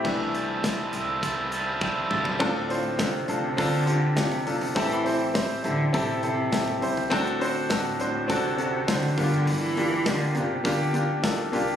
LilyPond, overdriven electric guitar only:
\new Staff \with { instrumentName = "Overdriven electric guitar" } { \time 4/4 \key d \minor \tempo 4 = 102 <c e g c' e' a'>8 <g c' e' a'>8 <g c' e' a'>8 <g c' e' a'>8 <c e g c' e' a'>8 <g c' e' a'>8 <g c' e' a'>8 <g c' e' a'>8 | r1 | r1 | r1 |
r1 | }